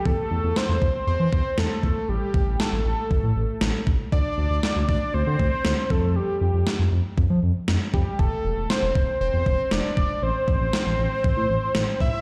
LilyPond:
<<
  \new Staff \with { instrumentName = "Analog synth lead" } { \time 4/4 \key c \mixolydian \tempo 4 = 118 a'4 c''4 c''4 a'4 | g'4 a'2~ a'8 r8 | d''4. d''8 c''4. a'8 | g'4 r2 r8 g'8 |
a'4 c''4 c''4 d''4 | c''2.~ c''8 e''8 | }
  \new Staff \with { instrumentName = "Analog synth bass" } { \clef bass \time 4/4 \key c \mixolydian e,16 r16 e,16 e,16 r16 e,16 e,16 r16 e,16 e16 e,16 r16 e,16 r16 e,16 r16 | a,,16 r16 a,,16 a,,16 r16 a,,16 a,,16 r16 a,,16 a,16 a,,16 r16 a,,16 r16 a,,16 r16 | d,16 r16 d,16 d,16 r16 d,16 d,16 r16 d,16 d16 d,16 r16 d,16 r16 f,8~ | f,16 r16 f,16 f,16 r16 f,16 f,16 r16 f,16 f16 f,16 r16 f,16 r16 f,16 r16 |
e,,16 r16 e,,16 e,,16 r16 e,,16 e,,16 r16 e,,16 e,16 e,,16 r16 e,,16 r16 e,,16 r16 | a,,16 r16 a,,16 a,,16 r16 a,,16 a,,16 r16 a,,16 a,16 a,,16 r16 a,,16 r16 a,,16 r16 | }
  \new DrumStaff \with { instrumentName = "Drums" } \drummode { \time 4/4 bd4 sn8 bd8 r8 bd8 sn8 bd8 | r8 bd8 sn4 bd4 sn8 bd8 | bd4 sn8 bd8 r8 bd8 sn8 bd8 | r4 sn4 bd4 sn8 bd8 |
bd4 sn8 bd8 r8 bd8 sn8 bd8 | r8 bd8 sn4 bd4 sn8 bd8 | }
>>